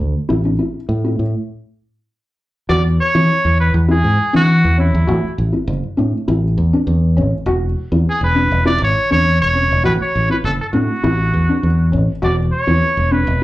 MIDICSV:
0, 0, Header, 1, 5, 480
1, 0, Start_track
1, 0, Tempo, 595829
1, 238, Time_signature, 4, 2, 24, 8
1, 10823, End_track
2, 0, Start_track
2, 0, Title_t, "Trumpet"
2, 0, Program_c, 0, 56
2, 2168, Note_on_c, 0, 74, 111
2, 2276, Note_off_c, 0, 74, 0
2, 2425, Note_on_c, 0, 73, 117
2, 2864, Note_off_c, 0, 73, 0
2, 2900, Note_on_c, 0, 71, 98
2, 3005, Note_off_c, 0, 71, 0
2, 3155, Note_on_c, 0, 68, 98
2, 3482, Note_off_c, 0, 68, 0
2, 3511, Note_on_c, 0, 66, 105
2, 3833, Note_off_c, 0, 66, 0
2, 3865, Note_on_c, 0, 64, 77
2, 4305, Note_off_c, 0, 64, 0
2, 6523, Note_on_c, 0, 68, 97
2, 6623, Note_off_c, 0, 68, 0
2, 6637, Note_on_c, 0, 71, 104
2, 6956, Note_off_c, 0, 71, 0
2, 6978, Note_on_c, 0, 74, 118
2, 7089, Note_off_c, 0, 74, 0
2, 7118, Note_on_c, 0, 73, 114
2, 7329, Note_off_c, 0, 73, 0
2, 7349, Note_on_c, 0, 73, 117
2, 7564, Note_off_c, 0, 73, 0
2, 7585, Note_on_c, 0, 73, 107
2, 7909, Note_off_c, 0, 73, 0
2, 7937, Note_on_c, 0, 71, 105
2, 7991, Note_off_c, 0, 71, 0
2, 8070, Note_on_c, 0, 73, 96
2, 8284, Note_off_c, 0, 73, 0
2, 8303, Note_on_c, 0, 71, 92
2, 8352, Note_off_c, 0, 71, 0
2, 8418, Note_on_c, 0, 69, 96
2, 8472, Note_off_c, 0, 69, 0
2, 8547, Note_on_c, 0, 69, 82
2, 8595, Note_off_c, 0, 69, 0
2, 8652, Note_on_c, 0, 66, 93
2, 9575, Note_off_c, 0, 66, 0
2, 9859, Note_on_c, 0, 74, 86
2, 9963, Note_off_c, 0, 74, 0
2, 10086, Note_on_c, 0, 73, 101
2, 10565, Note_on_c, 0, 71, 94
2, 10577, Note_off_c, 0, 73, 0
2, 10823, Note_off_c, 0, 71, 0
2, 10823, End_track
3, 0, Start_track
3, 0, Title_t, "Felt piano"
3, 0, Program_c, 1, 0
3, 231, Note_on_c, 1, 64, 92
3, 304, Note_off_c, 1, 64, 0
3, 362, Note_on_c, 1, 62, 67
3, 428, Note_off_c, 1, 62, 0
3, 473, Note_on_c, 1, 64, 68
3, 612, Note_off_c, 1, 64, 0
3, 841, Note_on_c, 1, 64, 69
3, 979, Note_off_c, 1, 64, 0
3, 2166, Note_on_c, 1, 66, 107
3, 2302, Note_off_c, 1, 66, 0
3, 2535, Note_on_c, 1, 64, 66
3, 2671, Note_off_c, 1, 64, 0
3, 3129, Note_on_c, 1, 64, 80
3, 3265, Note_off_c, 1, 64, 0
3, 3489, Note_on_c, 1, 62, 69
3, 3626, Note_off_c, 1, 62, 0
3, 3848, Note_on_c, 1, 61, 80
3, 3984, Note_off_c, 1, 61, 0
3, 4086, Note_on_c, 1, 66, 102
3, 4223, Note_off_c, 1, 66, 0
3, 4452, Note_on_c, 1, 64, 62
3, 4589, Note_off_c, 1, 64, 0
3, 4811, Note_on_c, 1, 62, 77
3, 4946, Note_off_c, 1, 62, 0
3, 5057, Note_on_c, 1, 64, 78
3, 5190, Note_off_c, 1, 64, 0
3, 5424, Note_on_c, 1, 62, 80
3, 5557, Note_off_c, 1, 62, 0
3, 5773, Note_on_c, 1, 61, 82
3, 5908, Note_off_c, 1, 61, 0
3, 6013, Note_on_c, 1, 66, 116
3, 6148, Note_off_c, 1, 66, 0
3, 6379, Note_on_c, 1, 64, 65
3, 6513, Note_off_c, 1, 64, 0
3, 6730, Note_on_c, 1, 62, 72
3, 6866, Note_off_c, 1, 62, 0
3, 6972, Note_on_c, 1, 64, 99
3, 7107, Note_off_c, 1, 64, 0
3, 7335, Note_on_c, 1, 62, 86
3, 7470, Note_off_c, 1, 62, 0
3, 7688, Note_on_c, 1, 61, 70
3, 7824, Note_off_c, 1, 61, 0
3, 7925, Note_on_c, 1, 66, 116
3, 8061, Note_off_c, 1, 66, 0
3, 8295, Note_on_c, 1, 64, 62
3, 8430, Note_off_c, 1, 64, 0
3, 8651, Note_on_c, 1, 62, 75
3, 8786, Note_off_c, 1, 62, 0
3, 8890, Note_on_c, 1, 64, 96
3, 9024, Note_off_c, 1, 64, 0
3, 9257, Note_on_c, 1, 62, 78
3, 9391, Note_off_c, 1, 62, 0
3, 9603, Note_on_c, 1, 61, 75
3, 9739, Note_off_c, 1, 61, 0
3, 9845, Note_on_c, 1, 66, 112
3, 9980, Note_off_c, 1, 66, 0
3, 10208, Note_on_c, 1, 64, 65
3, 10344, Note_off_c, 1, 64, 0
3, 10565, Note_on_c, 1, 62, 75
3, 10700, Note_off_c, 1, 62, 0
3, 10823, End_track
4, 0, Start_track
4, 0, Title_t, "Fingered electric bass"
4, 0, Program_c, 2, 33
4, 0, Note_on_c, 2, 38, 81
4, 113, Note_off_c, 2, 38, 0
4, 241, Note_on_c, 2, 33, 81
4, 468, Note_off_c, 2, 33, 0
4, 715, Note_on_c, 2, 45, 85
4, 945, Note_off_c, 2, 45, 0
4, 960, Note_on_c, 2, 45, 72
4, 1079, Note_off_c, 2, 45, 0
4, 2170, Note_on_c, 2, 40, 86
4, 2395, Note_off_c, 2, 40, 0
4, 2536, Note_on_c, 2, 52, 93
4, 2643, Note_off_c, 2, 52, 0
4, 2778, Note_on_c, 2, 40, 83
4, 3002, Note_off_c, 2, 40, 0
4, 3013, Note_on_c, 2, 40, 90
4, 3240, Note_off_c, 2, 40, 0
4, 3255, Note_on_c, 2, 44, 77
4, 3363, Note_off_c, 2, 44, 0
4, 3500, Note_on_c, 2, 52, 82
4, 3723, Note_off_c, 2, 52, 0
4, 3742, Note_on_c, 2, 40, 83
4, 3965, Note_off_c, 2, 40, 0
4, 3984, Note_on_c, 2, 40, 97
4, 4088, Note_off_c, 2, 40, 0
4, 4096, Note_on_c, 2, 33, 108
4, 4210, Note_off_c, 2, 33, 0
4, 4336, Note_on_c, 2, 33, 93
4, 4451, Note_off_c, 2, 33, 0
4, 4572, Note_on_c, 2, 30, 100
4, 4688, Note_off_c, 2, 30, 0
4, 4821, Note_on_c, 2, 45, 73
4, 4933, Note_off_c, 2, 45, 0
4, 5060, Note_on_c, 2, 33, 99
4, 5281, Note_off_c, 2, 33, 0
4, 5297, Note_on_c, 2, 40, 91
4, 5411, Note_off_c, 2, 40, 0
4, 5534, Note_on_c, 2, 40, 89
4, 5783, Note_on_c, 2, 33, 84
4, 5795, Note_off_c, 2, 40, 0
4, 5894, Note_off_c, 2, 33, 0
4, 6009, Note_on_c, 2, 28, 92
4, 6235, Note_off_c, 2, 28, 0
4, 6379, Note_on_c, 2, 40, 92
4, 6485, Note_off_c, 2, 40, 0
4, 6613, Note_on_c, 2, 28, 92
4, 6840, Note_off_c, 2, 28, 0
4, 6858, Note_on_c, 2, 28, 95
4, 7082, Note_off_c, 2, 28, 0
4, 7102, Note_on_c, 2, 32, 88
4, 7206, Note_off_c, 2, 32, 0
4, 7346, Note_on_c, 2, 40, 89
4, 7566, Note_off_c, 2, 40, 0
4, 7587, Note_on_c, 2, 28, 82
4, 7806, Note_off_c, 2, 28, 0
4, 7827, Note_on_c, 2, 28, 87
4, 7928, Note_off_c, 2, 28, 0
4, 7938, Note_on_c, 2, 33, 106
4, 8051, Note_off_c, 2, 33, 0
4, 8180, Note_on_c, 2, 33, 90
4, 8291, Note_off_c, 2, 33, 0
4, 8411, Note_on_c, 2, 30, 98
4, 8526, Note_off_c, 2, 30, 0
4, 8643, Note_on_c, 2, 45, 83
4, 8762, Note_off_c, 2, 45, 0
4, 8892, Note_on_c, 2, 33, 103
4, 9116, Note_off_c, 2, 33, 0
4, 9132, Note_on_c, 2, 40, 84
4, 9247, Note_off_c, 2, 40, 0
4, 9371, Note_on_c, 2, 40, 78
4, 9612, Note_on_c, 2, 33, 81
4, 9624, Note_off_c, 2, 40, 0
4, 9726, Note_off_c, 2, 33, 0
4, 9850, Note_on_c, 2, 28, 90
4, 10074, Note_off_c, 2, 28, 0
4, 10211, Note_on_c, 2, 40, 88
4, 10318, Note_off_c, 2, 40, 0
4, 10450, Note_on_c, 2, 28, 92
4, 10675, Note_off_c, 2, 28, 0
4, 10690, Note_on_c, 2, 28, 101
4, 10823, Note_off_c, 2, 28, 0
4, 10823, End_track
5, 0, Start_track
5, 0, Title_t, "Muted fingered electric bass strokes"
5, 4224, Note_on_c, 9, 29, 39
5, 4305, Note_off_c, 9, 29, 0
5, 4701, Note_on_c, 9, 29, 39
5, 4782, Note_off_c, 9, 29, 0
5, 8063, Note_on_c, 9, 29, 43
5, 8144, Note_off_c, 9, 29, 0
5, 8538, Note_on_c, 9, 29, 37
5, 8618, Note_off_c, 9, 29, 0
5, 10823, End_track
0, 0, End_of_file